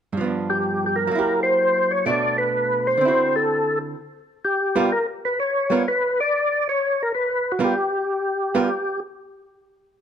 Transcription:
0.13 1.10 G2 soft
0.17 1.07 F3 soft
0.17 1.11 B3 soft
0.24 1.15 D4 soft
0.50 0.85 G4 medium
0.86 0.96 G4 medium
0.96 1.40 A#4 medium
1.07 2.04 F#3 medium
1.11 2.06 A#3 soft
1.11 2.06 E4 soft
1.19 2.07 G4 medium
1.43 1.92 C5 loud
1.91 2.05 C#5 medium
2.06 2.97 B2 medium
2.06 3.01 A3 medium
2.06 3.01 D4 medium
2.06 3.02 F#4 medium
2.06 2.37 D5 medium
2.38 2.87 B4 loud
2.87 3.35 C5 medium
2.97 3.94 D3 soft
2.97 3.96 C4 medium
3.05 3.98 E4 medium
3.05 3.99 F#4 medium
3.36 3.79 A4 medium
4.45 4.93 G4 medium
4.76 4.89 G3 medium
4.76 4.89 B3 medium
4.76 4.89 F4 medium
4.76 4.90 A#4 medium
4.92 5.06 A#4 medium
5.25 5.39 B4 medium
5.40 5.83 C#5 medium
5.70 5.84 G3 soft
5.70 5.84 B3 medium
5.70 5.84 F4 medium
5.70 5.85 A#4 medium
5.88 6.20 B4 medium
6.20 6.68 D5 loud
6.69 7.02 C#5 loud
7.03 7.12 A#4 medium
7.15 7.52 B4 medium
7.52 7.60 F#4 medium
7.59 7.73 G3 medium
7.59 7.73 B3 medium
7.59 7.73 F4 medium
7.59 7.73 A#4 medium
7.64 9.00 G4 medium
8.55 8.68 G3 medium
8.55 8.68 B3 medium
8.55 8.68 F4 medium
8.55 8.68 A#4 medium

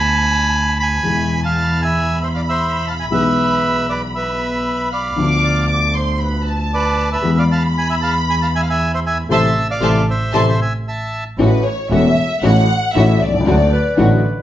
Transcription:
0.00 0.95 D2 medium
0.00 0.96 D2 medium
0.00 0.95 D3 medium
0.00 0.95 F3 soft
0.00 0.96 B3 soft
0.00 0.96 F4 medium
0.00 0.77 G#5 medium
0.00 1.05 A5 medium
0.00 0.78 B5 loud
0.80 1.42 G#5 medium
0.80 1.40 B5 medium
1.03 3.02 E2 medium
1.03 3.02 B2 soft
1.03 3.02 E3 medium
1.03 3.02 G#3 soft
1.03 1.57 G#5 medium
1.43 1.81 F5 medium
1.43 1.84 A5 medium
1.56 4.64 B5 medium
1.82 2.20 E5 medium
1.82 2.19 G#5 medium
2.21 2.29 C5 soft
2.21 2.27 E5 medium
2.34 2.42 D5 soft
2.34 2.40 F5 medium
2.49 2.85 C5 medium
2.49 2.88 E5 medium
2.87 2.95 F5 medium
2.87 2.93 A5 medium
3.00 3.07 E5 soft
3.00 3.05 G#5 medium
3.10 5.08 B1 medium
3.10 5.08 B2 soft
3.10 5.07 E3 soft
3.10 5.08 G#3 soft
3.10 5.08 B3 soft
3.10 5.09 G#4 soft
3.10 3.87 B4 medium
3.10 3.92 E5 medium
3.89 4.02 B4 soft
3.89 4.01 D5 medium
4.15 4.90 B4 medium
4.15 4.89 E5 medium
4.65 5.14 B5 medium
4.92 5.66 D5 soft
4.92 5.65 F5 medium
5.16 7.14 D2 medium
5.16 7.14 D3 medium
5.16 7.13 F3 soft
5.16 7.14 B3 soft
5.16 7.15 F4 medium
5.16 5.66 D6 medium
5.44 5.98 D5 medium
5.68 5.93 D6 medium
5.94 6.25 C5 medium
5.94 6.21 C6 medium
6.19 6.61 B4 medium
6.19 6.46 B5 medium
6.45 7.23 A5 medium
6.74 7.10 B4 medium
6.74 7.09 D5 medium
7.12 7.36 B4 medium
7.12 7.39 E5 medium
7.22 9.20 E2 medium
7.22 9.20 E3 medium
7.22 9.20 G#3 soft
7.22 9.21 B3 soft
7.22 9.21 G#4 medium
7.22 9.27 B5 loud
7.38 7.45 D5 medium
7.38 7.44 F5 medium
7.52 7.64 F5 medium
7.52 7.63 A5 medium
7.77 7.88 G#5 medium
7.77 7.90 B5 medium
7.89 7.96 E5 medium
7.89 7.95 G#5 medium
8.02 8.15 F5 medium
8.02 8.13 A5 medium
8.29 8.35 G#5 medium
8.29 8.35 B5 medium
8.42 8.48 F5 medium
8.42 8.47 A5 medium
8.55 8.62 E5 medium
8.55 8.61 G#5 medium
8.62 8.68 F5 medium
8.70 8.92 E5 medium
8.70 8.92 G#5 medium
8.94 9.00 C5 medium
8.94 9.00 E5 medium
9.06 9.18 E5 medium
9.06 9.18 G#5 medium
9.29 9.50 A1 medium
9.29 9.47 C3 medium
9.29 9.47 E3 medium
9.29 9.46 A3 medium
9.29 9.43 C5 medium
9.29 9.48 E5 medium
9.29 9.68 E5 medium
9.29 9.48 A5 medium
9.29 9.67 A5 medium
9.29 9.47 C6 medium
9.71 10.06 D5 medium
9.71 10.06 F5 medium
9.80 10.01 A1 medium
9.80 9.98 C3 medium
9.80 9.98 E3 medium
9.80 9.98 A3 medium
9.80 9.94 C5 medium
9.80 9.99 E5 medium
9.80 9.99 A5 medium
9.80 9.99 C6 medium
10.10 10.34 C5 medium
10.10 10.34 E5 medium
10.33 10.53 A1 medium
10.33 10.51 C3 medium
10.33 10.50 E3 medium
10.33 10.51 A3 medium
10.33 10.41 A4 medium
10.33 10.47 C5 medium
10.33 10.41 D5 medium
10.33 10.51 E5 medium
10.33 10.51 A5 medium
10.33 10.51 C6 medium
10.49 10.60 C5 medium
10.49 10.60 E5 medium
10.61 10.73 E5 soft
10.61 10.73 G#5 medium
10.88 11.24 E5 soft
10.88 11.24 A5 medium
11.38 11.60 A1 medium
11.38 11.61 A1 medium
11.38 11.61 A2 medium
11.38 11.61 E3 medium
11.38 11.61 A3 medium
11.38 11.61 C#4 medium
11.38 11.61 F#4 medium
11.38 11.64 B4 medium
11.66 11.92 C#5 medium
11.90 12.13 E1 medium
11.90 12.13 E2 medium
11.90 12.13 E3 medium
11.90 12.12 A3 medium
11.90 12.13 A3 medium
11.90 12.13 C#4 medium
11.90 12.13 F#4 medium
11.90 12.40 E5 medium
12.42 12.64 A1 medium
12.42 12.65 A1 medium
12.42 12.65 A2 medium
12.42 12.65 E3 medium
12.42 12.65 A3 medium
12.42 12.65 C#4 medium
12.42 12.65 E4 medium
12.42 12.65 F#4 medium
12.42 12.95 F#5 loud
12.94 13.17 A1 medium
12.94 13.18 A1 medium
12.94 13.17 A2 medium
12.94 13.17 E3 medium
12.94 13.16 A3 medium
12.94 13.17 A3 medium
12.94 13.17 C#4 medium
12.94 13.16 E4 medium
12.94 13.16 F#4 medium
12.94 13.18 F#4 medium
12.94 13.21 E5 medium
13.21 13.46 C2 soft
13.21 14.24 D5 medium
13.28 13.34 B1 soft
13.34 13.40 C2 medium
13.40 13.47 C#2 medium
13.45 13.68 D2 medium
13.45 13.69 D2 medium
13.45 13.69 D3 medium
13.45 13.69 F#3 medium
13.45 13.68 A3 medium
13.45 13.69 A3 medium
13.45 13.68 D4 medium
13.45 13.68 F#4 medium
13.45 13.69 F#4 medium
13.72 14.42 B4 loud
13.97 14.20 A1 medium
13.97 14.20 A2 medium
13.97 14.20 D3 medium
13.97 14.19 F#3 medium
13.97 14.19 A3 medium
13.97 14.20 A3 medium
13.97 14.20 D4 medium
13.97 14.20 F#4 medium

